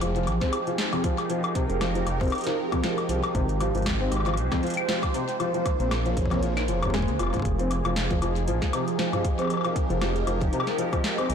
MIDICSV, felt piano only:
0, 0, Header, 1, 2, 480
1, 0, Start_track
1, 0, Key_signature, -4, "minor"
1, 0, Tempo, 512821
1, 1214, Time_signature, 4, 2, 24, 8
1, 10620, End_track
2, 0, Start_track
2, 0, Title_t, "Felt piano"
2, 0, Program_c, 0, 0
2, 14, Note_on_c, 0, 53, 69
2, 102, Note_off_c, 0, 53, 0
2, 148, Note_on_c, 0, 53, 78
2, 249, Note_off_c, 0, 53, 0
2, 388, Note_on_c, 0, 60, 73
2, 489, Note_off_c, 0, 60, 0
2, 628, Note_on_c, 0, 53, 71
2, 698, Note_off_c, 0, 53, 0
2, 868, Note_on_c, 0, 41, 75
2, 938, Note_off_c, 0, 41, 0
2, 974, Note_on_c, 0, 53, 69
2, 1062, Note_off_c, 0, 53, 0
2, 1214, Note_on_c, 0, 53, 76
2, 1302, Note_off_c, 0, 53, 0
2, 1454, Note_on_c, 0, 48, 75
2, 1507, Note_off_c, 0, 48, 0
2, 1694, Note_on_c, 0, 53, 77
2, 1782, Note_off_c, 0, 53, 0
2, 1828, Note_on_c, 0, 53, 71
2, 1929, Note_off_c, 0, 53, 0
2, 2068, Note_on_c, 0, 60, 77
2, 2169, Note_off_c, 0, 60, 0
2, 2308, Note_on_c, 0, 53, 74
2, 2378, Note_off_c, 0, 53, 0
2, 2548, Note_on_c, 0, 41, 73
2, 2618, Note_off_c, 0, 41, 0
2, 2654, Note_on_c, 0, 53, 82
2, 2742, Note_off_c, 0, 53, 0
2, 2894, Note_on_c, 0, 53, 74
2, 2982, Note_off_c, 0, 53, 0
2, 3134, Note_on_c, 0, 48, 81
2, 3187, Note_off_c, 0, 48, 0
2, 3374, Note_on_c, 0, 53, 74
2, 3462, Note_off_c, 0, 53, 0
2, 3508, Note_on_c, 0, 53, 71
2, 3609, Note_off_c, 0, 53, 0
2, 3748, Note_on_c, 0, 60, 69
2, 3849, Note_off_c, 0, 60, 0
2, 3988, Note_on_c, 0, 53, 75
2, 4058, Note_off_c, 0, 53, 0
2, 4228, Note_on_c, 0, 41, 75
2, 4298, Note_off_c, 0, 41, 0
2, 4334, Note_on_c, 0, 53, 76
2, 4422, Note_off_c, 0, 53, 0
2, 4574, Note_on_c, 0, 53, 80
2, 4662, Note_off_c, 0, 53, 0
2, 4814, Note_on_c, 0, 48, 74
2, 4867, Note_off_c, 0, 48, 0
2, 5054, Note_on_c, 0, 53, 78
2, 5142, Note_off_c, 0, 53, 0
2, 5188, Note_on_c, 0, 53, 73
2, 5289, Note_off_c, 0, 53, 0
2, 5428, Note_on_c, 0, 60, 73
2, 5529, Note_off_c, 0, 60, 0
2, 5668, Note_on_c, 0, 53, 73
2, 5738, Note_off_c, 0, 53, 0
2, 5908, Note_on_c, 0, 41, 76
2, 5978, Note_off_c, 0, 41, 0
2, 6014, Note_on_c, 0, 53, 79
2, 6102, Note_off_c, 0, 53, 0
2, 6254, Note_on_c, 0, 53, 77
2, 6342, Note_off_c, 0, 53, 0
2, 6388, Note_on_c, 0, 48, 76
2, 6458, Note_off_c, 0, 48, 0
2, 6494, Note_on_c, 0, 56, 97
2, 6622, Note_off_c, 0, 56, 0
2, 6734, Note_on_c, 0, 65, 73
2, 6862, Note_off_c, 0, 65, 0
2, 6868, Note_on_c, 0, 53, 69
2, 6910, Note_off_c, 0, 53, 0
2, 7108, Note_on_c, 0, 60, 75
2, 7209, Note_off_c, 0, 60, 0
2, 7348, Note_on_c, 0, 53, 75
2, 7418, Note_off_c, 0, 53, 0
2, 7588, Note_on_c, 0, 53, 75
2, 7630, Note_off_c, 0, 53, 0
2, 7694, Note_on_c, 0, 53, 73
2, 7782, Note_off_c, 0, 53, 0
2, 7934, Note_on_c, 0, 53, 81
2, 8022, Note_off_c, 0, 53, 0
2, 8174, Note_on_c, 0, 48, 76
2, 8227, Note_off_c, 0, 48, 0
2, 8414, Note_on_c, 0, 53, 80
2, 8502, Note_off_c, 0, 53, 0
2, 8548, Note_on_c, 0, 53, 74
2, 8649, Note_off_c, 0, 53, 0
2, 8788, Note_on_c, 0, 60, 76
2, 8888, Note_off_c, 0, 60, 0
2, 9028, Note_on_c, 0, 53, 76
2, 9098, Note_off_c, 0, 53, 0
2, 9268, Note_on_c, 0, 53, 73
2, 9310, Note_off_c, 0, 53, 0
2, 9374, Note_on_c, 0, 53, 79
2, 9462, Note_off_c, 0, 53, 0
2, 9613, Note_on_c, 0, 53, 74
2, 9702, Note_off_c, 0, 53, 0
2, 9853, Note_on_c, 0, 48, 81
2, 9907, Note_off_c, 0, 48, 0
2, 10094, Note_on_c, 0, 53, 82
2, 10182, Note_off_c, 0, 53, 0
2, 10228, Note_on_c, 0, 53, 75
2, 10328, Note_off_c, 0, 53, 0
2, 10468, Note_on_c, 0, 60, 77
2, 10568, Note_off_c, 0, 60, 0
2, 10620, End_track
0, 0, End_of_file